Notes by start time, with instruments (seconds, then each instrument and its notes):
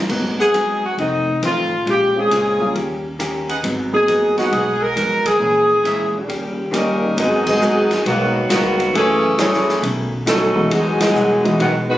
0.09 upright bass G#1, hollow-body jazz guitar G#2 F#3 B3 D#4, grand piano F#3 A#3 B3 D#4, kick, crash
0.39 trumpet section G#4 B4 D#5 F#5, saxophone section G#4
0.53 hollow-body jazz guitar G#2 F#3 B3 D#4, hi-hat pedal, ride
0.85 saxophone section F#4
0.97 upright bass F1, hollow-body jazz guitar F2 D#3 A3 C4, saxophone section D#4, ride
1.42 upright bass A1, hollow-body jazz guitar F2 D#3 A3 C4, saxophone section F4, cross-stick, hi-hat pedal, ride
1.85 upright bass A#1, hollow-body jazz guitar A#2 G#3 C#4 F4, ride
1.90 saxophone section G4
2.15 grand piano G#3 C4 C#4 F4, saxophone section G#4
2.30 upright bass C#2, hollow-body jazz guitar A#2 G#3 C#4 F4, trumpet section A#4 C#5 F5 G#5, hi-hat pedal, ride
2.59 grand piano G3 A#3 C#4 F4
2.75 upright bass D#2, hollow-body jazz guitar D#3 A#3 C#4 G4, ride
3.19 hollow-body jazz guitar D#3 A#3 C#4 G4, cross-stick, hi-hat pedal, ride
3.49 trumpet section G#4 B4 D#5 F#5, ride
3.63 upright bass G#1, hollow-body jazz guitar G#2 F#3 B3 D#4, ride
3.92 grand piano F#3 A#3 B3 D#4, saxophone section G#4
4.08 hollow-body jazz guitar G#2 F#3 B3 D#4, hi-hat pedal, ride
4.36 grand piano F#3 A#3 B3 D#4, saxophone section F#4, trumpet section G#4 B4 D#5 F#5, snare, ride
4.51 upright bass B1, hollow-body jazz guitar G#2 F#3 B3 D#4, saxophone section G#4, ride
4.82 saxophone section A#4
4.96 upright bass F2, hollow-body jazz guitar G#2 F#3 B3 D#4, cross-stick, hi-hat pedal, ride
5.26 saxophone section G#4, kick, ride
5.39 upright bass A#1, hollow-body jazz guitar A#2 E3 G#3 C#4, grand piano G#3 A#3 C#4 E4
5.84 hollow-body jazz guitar A#2 E3 G#3 C#4, trumpet section G#4 A#4 C#5 E5, hi-hat pedal, ride
6.12 trombone section A#2 C#3 G3, saxophone section G4
6.27 upright bass D#2, hollow-body jazz guitar D#3 A#3 C#4 G4, ride
6.71 trombone section C#3 G3 A#3, hollow-body jazz guitar D#3 A#3 C#4 G4, grand piano G3 A#3 C#4 D#4, saxophone section G3 C#4 D#4 A#4, cross-stick, hi-hat pedal, ride
7.17 upright bass G#1, trombone section B2 D#3 G#3, saxophone section F#3 B3 D#4 G#4, hollow-body jazz guitar G#3 B3 F#4 A#4, ride
7.47 trombone section B2 D#3 G#3, saxophone section F#3 B3 D#4 G#4, kick, crash
7.61 hollow-body jazz guitar G#3 B3 F#4 A#4, hi-hat pedal
7.91 snare, ride
8.05 upright bass B1, trombone section B2 D#3 F#3, saxophone section D#3 A#3 B3 F#4, hollow-body jazz guitar G#3 B3 F#4 A#4, ride
8.50 upright bass C#2, trombone section B2 D#3 F#3, saxophone section D#3 A#3 B3 F#4, hollow-body jazz guitar G#3 B3 F#4 A#4, snare, hi-hat pedal, ride
8.80 ride
8.93 upright bass F#1, trombone section C#3 E3 A3, saxophone section E3 C#4 G#4 A4, hollow-body jazz guitar F#3 A3 E4 G#4, grand piano F#3 A3 C#4 E4 G#4, ride
9.38 trombone section E3 A3 C#4, hollow-body jazz guitar F#3 A3 E4 G#4, saxophone section A3 E4 G#4 C#5, snare, hi-hat pedal, ride
9.54 snare
9.69 snare
9.82 upright bass B1, hollow-body jazz guitar B2 D#3 A3 C#4, ride
10.26 hollow-body jazz guitar B2 D#3 A3 C#4, trombone section D#3 F#3 A3, saxophone section F#3 C#4 D#4 A4, snare, hi-hat pedal, ride
10.55 grand piano E3 G#3 B3 D#4 F#4
10.70 upright bass E2, trombone section B2 D#3 G#3, hollow-body jazz guitar E3 G#3 D#4 F#4, saxophone section F#3 B3 D#4 G#4, ride
11.00 trombone section B2 D#3 G#3, saxophone section F#3 B3 D#4 G#4, snare, ride
11.15 upright bass B2, hollow-body jazz guitar E3 G#3 D#4 F#4, hi-hat pedal
11.44 grand piano E3 G#3 B3 D#4 F#4, ride
11.58 upright bass B1, trombone section B2 D#3 F#3, saxophone section D#3 G#3 B3 F#4, hollow-body jazz guitar E3 G#3 D#4 F#4, ride
11.88 trombone section D#3 G#3 B3, saxophone section G#3 D#4 F#4 B4